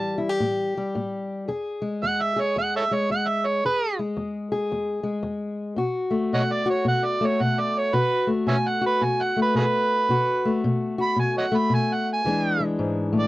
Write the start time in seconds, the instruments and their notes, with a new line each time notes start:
Already playing: steel-string acoustic guitar A2 E3 G3 G4, harmonica A5
0.18 steel-string acoustic guitar E4
0.29 steel-string acoustic guitar G4
0.40 steel-string acoustic guitar A2
0.77 steel-string acoustic guitar G3
0.95 steel-string acoustic guitar A2
1.48 steel-string acoustic guitar E2 G#4
1.82 steel-string acoustic guitar G#3
2.03 steel-string acoustic guitar E2, harmonica F#5
2.21 harmonica E5
2.36 steel-string acoustic guitar G#4
2.40 harmonica C#5
2.56 steel-string acoustic guitar E2, harmonica F#5
2.76 harmonica A4 C#5 E5
2.91 steel-string acoustic guitar G#3, harmonica C#5
3.10 steel-string acoustic guitar E2, harmonica F#5
3.27 harmonica E5
3.46 harmonica C#5
3.65 steel-string acoustic guitar E2 G#4, harmonica B4
3.99 steel-string acoustic guitar G#3
4.17 steel-string acoustic guitar E2
4.52 steel-string acoustic guitar G#4
4.72 steel-string acoustic guitar E2
5.03 steel-string acoustic guitar G#3
5.23 steel-string acoustic guitar E2
5.76 steel-string acoustic guitar B2 F#4
6.11 steel-string acoustic guitar A3
6.33 steel-string acoustic guitar B2, harmonica C#5 D#5 F#5
6.52 harmonica D5
6.66 steel-string acoustic guitar F#4
6.70 harmonica C#5
6.85 steel-string acoustic guitar B2, harmonica F#5
7.05 harmonica D5
7.21 steel-string acoustic guitar A3
7.26 harmonica C#5
7.40 steel-string acoustic guitar B2, harmonica F#5
7.60 harmonica D5
7.78 harmonica C#5
7.93 steel-string acoustic guitar B2 F#4, harmonica B4
8.27 steel-string acoustic guitar A3
8.47 steel-string acoustic guitar B2, harmonica C#5 E5 G#5
8.68 harmonica F#5
8.81 steel-string acoustic guitar F#4
8.86 harmonica B4
9.01 steel-string acoustic guitar B2, harmonica G#5
9.22 harmonica F#5
9.36 steel-string acoustic guitar A3
9.42 harmonica B4
9.55 steel-string acoustic guitar B2, harmonica F#4 G#4 B4
10.09 steel-string acoustic guitar B2 F#4
10.45 steel-string acoustic guitar A3
10.64 steel-string acoustic guitar B2
10.98 steel-string acoustic guitar F#4, harmonica B5
11.16 steel-string acoustic guitar B2, harmonica G#5
11.38 harmonica C#5 D#5 F#5
11.52 steel-string acoustic guitar A3
11.58 harmonica B5
11.70 steel-string acoustic guitar B2
11.74 harmonica G#5
11.93 harmonica F#5
12.13 harmonica G#5
12.24 steel-string acoustic guitar E2 E3 G#3 D4 G#4
12.60 steel-string acoustic guitar G#3
12.79 steel-string acoustic guitar G#2
13.13 steel-string acoustic guitar A2
13.19 harmonica D5